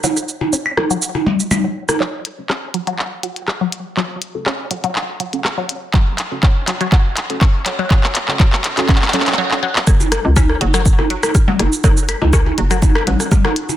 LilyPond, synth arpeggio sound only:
\new Staff \with { instrumentName = "Synth arpeggio sound" } { \clef bass \time 4/4 \key fis \minor \tempo 4 = 122 fis16 r8. cis'16 r16 fis16 fis16 r8 fis16 r8 fis16 r8 | fis16 r8. cis'16 r16 fis16 fis16 r8 fis16 r8 fis16 r8 | fis16 r8. cis'16 r16 fis16 fis16 r8 fis16 r8 fis16 r8 | fis16 r8. cis'16 r16 fis16 fis16 fis16 r8. cis'16 r16 fis16 fis16 |
fis16 r8. fis16 r8. fis16 r16 fis16 r16 fis16 r16 fis16 r16 | fis16 r8. cis'16 r16 fis16 fis16 r8 fis16 r8 fis16 r8 | fis16 r8. cis'16 r16 fis16 fis16 r8 fis16 r8 fis16 r8 | }